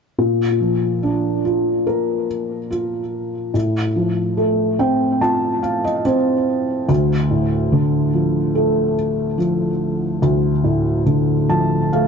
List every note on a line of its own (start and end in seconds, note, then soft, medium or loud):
0.18 3.51 A#2 soft
0.61 2.25 F3 soft
1.03 2.67 D4 soft
1.45 2.69 F4 soft
1.87 3.50 A#4 soft
2.71 3.52 F4 soft
3.54 6.85 A2 soft
3.96 5.60 F3 soft
4.37 6.01 A3 soft
4.79 6.04 C4 soft
4.79 5.19 G5 soft
5.21 6.85 F4 soft
5.21 5.61 A5 soft
5.63 5.83 F5 soft
5.84 6.04 D#5 soft
6.05 6.86 C4 soft
6.05 6.85 C5 soft
6.89 10.19 D2 soft
7.31 8.93 A2 soft
7.72 9.35 D3 soft
8.13 9.36 F3 soft
8.55 10.19 A3 soft
9.38 11.03 F3 soft
10.22 12.07 D2 medium
10.64 12.07 A2 soft
11.06 12.07 D3 soft
11.49 12.07 F3 soft
11.49 11.90 A5 medium
11.93 12.07 A3 soft
11.93 12.07 F5 medium